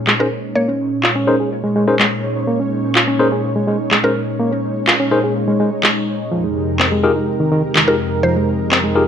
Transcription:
Already playing: analog synth pad A#2 G#3 C#4 D#4 C#5
0.07 reed electric piano G#3, clap
0.20 tine electric piano C#4 D#4 G#4 A#4 C5, synth pluck A#4
0.55 reed electric piano A#3, synth pluck C#5
0.68 reed electric piano C#4
1.03 reed electric piano F4, clap
1.16 reed electric piano C#4
1.27 tine electric piano C#4 D#4 G#4 A#4 C5
1.40 reed electric piano G#4
1.64 reed electric piano G#3
1.76 reed electric piano G#3
1.88 tine electric piano C#4 D#4 G#4 A#4 C5
1.99 reed electric piano G#3, clap
2.48 reed electric piano A#3
2.60 reed electric piano C#4
2.95 reed electric piano F4, clap
3.08 reed electric piano C#4
3.19 tine electric piano C#4 D#4 G#4 A#4 C5
3.32 reed electric piano G#4
3.56 reed electric piano G#3
3.67 reed electric piano G#3
3.91 reed electric piano G#3, clap
4.04 tine electric piano C#4 D#4 G#4 A#4 C5, synth pluck A#4
4.39 reed electric piano A#3
4.52 reed electric piano C#4
4.87 reed electric piano F4, clap
5.00 reed electric piano C#4
5.11 tine electric piano C#4 D#4 G#4 A#4 C5
5.24 reed electric piano G#4
5.48 reed electric piano G#3
5.60 reed electric piano G#3
5.83 reed electric piano G#3, clap
6.31 analog synth pad F2 C3 G4 A#4, reed electric piano F3
6.44 reed electric piano G#3
6.80 reed electric piano C4, clap
6.92 reed electric piano G#3
7.04 tine electric piano D#4 F4 G4 G#4 A#4
7.16 reed electric piano D#4
7.40 reed electric piano D#3
7.52 reed electric piano D#3
7.75 reed electric piano D#3, clap
7.88 tine electric piano D#4 F4 G4 G#4 A#4, synth pluck A#4
8.23 reed electric piano F3, synth pluck C5
8.36 reed electric piano G#3
8.72 reed electric piano C4, clap
8.84 reed electric piano G#3
8.95 tine electric piano D#4 F4 G4 G#4 A#4

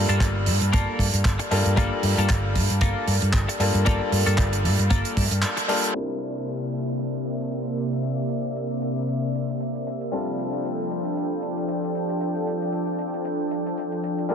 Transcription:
Already playing: grand piano G3 A#3 D4 F4 A4
0.09 fingered electric bass G2, clean electric guitar A#3 F4 A4, closed hi-hat
0.20 fingered electric bass G1, kick, clap, closed hi-hat
0.35 muted clean electric guitar stroke
0.46 fingered electric bass G2, open hi-hat
0.61 fingered electric bass G2, closed hi-hat
0.73 fingered electric bass G1, clean electric guitar A#3 F4 A4, kick, closed hi-hat
0.99 fingered electric bass G2, kick, open hi-hat
1.13 fingered electric bass G2, closed hi-hat
1.25 fingered electric bass G1, kick, clap, closed hi-hat
1.39 muted clean electric guitar stroke, closed hi-hat
1.51 fingered electric bass G2, grand piano G3 A#3 D4 F4 A4, muted clean electric guitar stroke, open hi-hat
1.66 fingered electric bass G2, closed hi-hat
1.76 fingered electric bass G1, grand piano G3 A#3 D4 F4 A4, clean electric guitar A#3 F4 A4, kick, closed hi-hat
2.03 fingered electric bass G2, muted clean electric guitar stroke, open hi-hat
2.18 fingered electric bass G2, clean electric guitar A#3 F4 A4, closed hi-hat
2.29 fingered electric bass G1, kick, clap, closed hi-hat
2.44 muted clean electric guitar stroke
2.55 fingered electric bass G2, kick, open hi-hat
2.70 fingered electric bass G2, closed hi-hat
2.81 fingered electric bass G1, clean electric guitar A#3 F4 A4, kick, closed hi-hat
3.07 fingered electric bass G2, open hi-hat
3.22 fingered electric bass G2, closed hi-hat
3.33 fingered electric bass G1, kick, clap, closed hi-hat
3.48 muted clean electric guitar stroke, closed hi-hat
3.60 fingered electric bass G2, grand piano G3 A#3 D4 F4 A4, muted clean electric guitar stroke, open hi-hat
3.74 fingered electric bass G2, closed hi-hat
3.85 fingered electric bass G1, grand piano G3 A#3 D4 F4 A4, clean electric guitar A#3 F4 A4, kick, closed hi-hat
4.12 fingered electric bass G2, muted clean electric guitar stroke, open hi-hat
4.26 fingered electric bass G2, clean electric guitar A#3 F4 A4, closed hi-hat
4.38 fingered electric bass G1, kick, clap, closed hi-hat
4.52 muted clean electric guitar stroke, closed hi-hat
4.64 fingered electric bass G2, open hi-hat
4.79 fingered electric bass G2, closed hi-hat
4.90 fingered electric bass G1, clean electric guitar A#3 F4 A4, kick, closed hi-hat
5.05 closed hi-hat
5.17 fingered electric bass G2, kick, open hi-hat
5.31 fingered electric bass G2, closed hi-hat
5.42 clap, closed hi-hat
5.57 muted clean electric guitar stroke, closed hi-hat
5.68 grand piano G3 A#3 D4 F4 A4, muted clean electric guitar stroke, open hi-hat
5.84 closed hi-hat
5.94 analog synth pad C3 A#3 D5 E5, grand piano G3 C4 D4 E4 A#4, closed hi-hat
6.21 closed hi-hat
6.35 closed hi-hat
6.47 closed hi-hat
6.62 closed hi-hat
6.73 closed hi-hat
6.88 closed hi-hat
6.99 closed hi-hat
7.25 closed hi-hat
7.40 closed hi-hat
7.52 closed hi-hat
7.65 closed hi-hat
7.77 closed hi-hat
7.92 closed hi-hat
8.03 closed hi-hat
8.30 closed hi-hat
8.45 closed hi-hat
8.56 closed hi-hat
8.71 closed hi-hat
8.82 closed hi-hat
8.96 closed hi-hat
9.08 closed hi-hat
9.35 closed hi-hat
9.49 closed hi-hat
9.60 closed hi-hat
9.75 closed hi-hat
9.87 closed hi-hat
10.01 closed hi-hat
10.12 analog synth pad F3 D4 A4 G5, grand piano G3 C4 D4 F4 A4, closed hi-hat
10.39 closed hi-hat
10.53 closed hi-hat
10.65 closed hi-hat
10.80 closed hi-hat
10.91 closed hi-hat
11.05 closed hi-hat
11.17 closed hi-hat
11.43 closed hi-hat
11.57 closed hi-hat
11.68 closed hi-hat
11.84 closed hi-hat
11.95 closed hi-hat
12.09 closed hi-hat
12.21 closed hi-hat
12.35 closed hi-hat
12.47 closed hi-hat
12.62 closed hi-hat
12.73 closed hi-hat
12.87 closed hi-hat
12.99 closed hi-hat
13.14 closed hi-hat
13.25 closed hi-hat
13.51 closed hi-hat
13.67 closed hi-hat
13.78 closed hi-hat
13.92 closed hi-hat
14.04 closed hi-hat
14.18 closed hi-hat
14.29 grand piano G3 A#3 D4 F4 A4, analog synth pad G3 A#3 F4 A5, closed hi-hat

